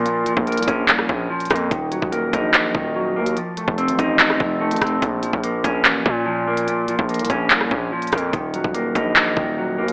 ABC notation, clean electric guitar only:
X:1
M:4/4
L:1/8
Q:1/4=145
K:Bbm
V:1 name="Clean electric guitar" clef=bass
[B,,F,B,] F, B, D2 B,, F, B, | E, G, B, E2 E, G, B, | F, =A, C E2 F, A, C | B,, F, B, D2 B,, F, B, |
B,, F, B, D2 B,, F, B, | E, G, B, E2 E, G, B, |]